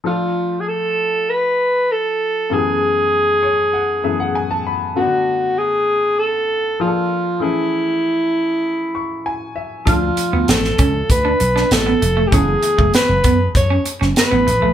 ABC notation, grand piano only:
X:1
M:4/4
L:1/16
Q:1/4=98
K:Dlyd
V:1 name="Grand piano"
z16 | z6 c2 f2 e f g a b2 | z16 | z8 z2 c'2 g2 e2 |
z16 | z16 |]
V:2 name="Grand piano"
[=F,A,DA]16 | [F,,E,A,B,=G^G]8- [F,,E,A,B,=G^G]2 [F,,E,A,B,G]6 | [C,D,A,B,F]12 [=F,_B,DGA]4 | [E,A,CG]16 |
[=F,A,DA]16 | [E,A,B,G]16 |]